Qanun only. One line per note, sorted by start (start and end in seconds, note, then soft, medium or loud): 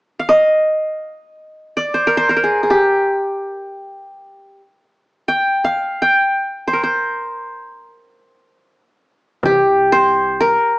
0.19 1.08 F5 medium
0.29 1.83 D#5 medium
1.77 2.75 D5 medium
1.94 2.17 C5 medium
2.07 2.29 A#4 medium
2.17 2.30 C5 medium
2.29 2.36 A#4 medium
2.29 3.36 C5 soft
2.37 3.50 A#4 medium
2.44 2.63 G#4 medium
2.63 2.76 G#4 soft
2.70 4.59 G4 medium
5.28 6.02 G5 medium
5.64 6.53 F5 medium
6.02 6.85 G5 medium
6.68 6.83 C5 medium
6.73 7.87 A#4 medium
6.83 8.81 C5 medium
9.46 10.71 G4 medium
9.92 10.79 C5 loud
10.40 10.79 A#4 medium